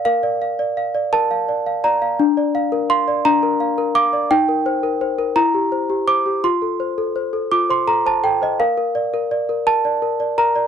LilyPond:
\new Staff \with { instrumentName = "Celesta" } { \time 6/8 \key bes \major \tempo 4. = 56 << { f''4. a''4 bes''8~ | bes''4 c'''8 bes''4 d'''8 | g''4. bes''4 d'''8 | c'''4. d'''16 c'''16 bes''16 a''16 g''16 ees''16 |
f''4. a''4 bes''8 | } \\ { bes'16 d''16 f''16 d''16 f''16 d''16 bes'16 f''16 d''16 f''16 d''16 f''16 | d'16 d''16 f''16 bes'16 f''16 d''16 d'16 bes'16 f''16 bes'16 f''16 d''16 | ees'16 bes'16 c''16 bes'16 c''16 bes'16 e'16 g'16 c''16 g'16 c''16 g'16 | f'16 a'16 c''16 a'16 c''16 a'16 f'16 c''16 a'16 c''16 a'16 c''16 |
bes'16 bes'16 d''16 bes'16 d''16 bes'16 bes'16 d''16 bes'16 d''16 bes'16 d''16 | } >> }